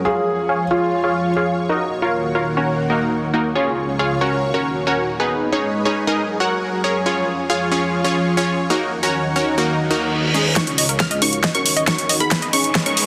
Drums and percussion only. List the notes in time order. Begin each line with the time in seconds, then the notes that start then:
10.56 kick, snare, closed hi-hat
10.67 closed hi-hat
10.78 open hi-hat
10.89 closed hi-hat
11.00 kick, snare, closed hi-hat
11.11 closed hi-hat
11.22 open hi-hat
11.33 closed hi-hat
11.44 kick, snare, closed hi-hat
11.55 closed hi-hat
11.66 open hi-hat
11.77 closed hi-hat
11.87 kick, snare, closed hi-hat
11.98 closed hi-hat
12.09 open hi-hat
12.20 closed hi-hat
12.31 kick, snare, closed hi-hat
12.42 closed hi-hat
12.53 open hi-hat
12.64 closed hi-hat
12.75 kick, snare, closed hi-hat
12.86 closed hi-hat
12.97 open hi-hat